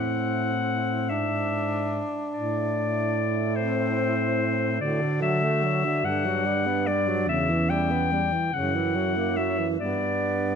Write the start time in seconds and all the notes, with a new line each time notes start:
Already playing: A2 C4 E4 F#5
1.09 G#2 D4 E5
2.33 A2 E4 D5
3.56 C4 C5
4.80 A2 D3 F#4 D5
5.02 D3
5.22 F#3 E5
5.43 A3
5.64 F#3
5.85 D3
6.04 G2 D3 D4 F#5
6.26 F#3
6.46 G3
6.67 B3
6.87 G3 D5
7.07 F#3
7.27 E2 C#3 C#4 E5
7.50 E3
7.70 G3 G5
7.91 B3
8.12 G3
8.32 E3
8.53 F#2 C#3 E4 F#5
8.75 E3
8.96 F#3
9.17 A#3
9.37 F#3 E5
9.58 E3
9.79 G2 B3 D4 D5